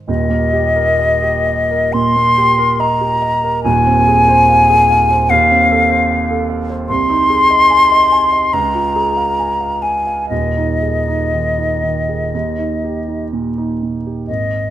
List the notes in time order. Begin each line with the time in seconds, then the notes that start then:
0.08 D#1 D#2 D#5
0.30 A#3
0.53 G4
0.76 A#4
0.99 D#5
1.22 G4
1.46 D#5
1.71 A#4
1.93 A#2 C6
2.16 A#3
2.38 G4
2.58 A#4
2.80 D#5 A#5
3.01 G4
3.22 D#5
3.44 A#4
3.63 D#1 D#2 G#5
3.86 C4
4.08 G#4
4.28 C5
4.49 F5
4.69 G#4
4.90 F5
5.11 C5
5.30 D#2 F5
5.51 C4
5.71 A4
5.91 C5
6.11 F5
6.30 A4
6.50 F5
6.70 C5
6.89 C2 C6
7.10 D#4
7.30 G#4
7.50 D#5
7.70 G#5
7.92 D#5
8.11 G#5
8.33 D#5
8.53 C#2 A#5
8.75 F4
8.96 G#4
9.17 F5
9.39 G#5
9.61 F5
9.82 G#5
10.07 F5
10.29 D#1 D#2 D#5
10.57 D#4
10.82 G#4
11.07 D#4
11.33 D#3
11.58 D#4
11.84 D#3
12.09 G#4
12.34 D#2
12.58 D#4
12.84 G4
13.08 D#4
13.33 A#2
13.58 D#4
13.83 A#2
14.07 G4
14.27 G#1 D#5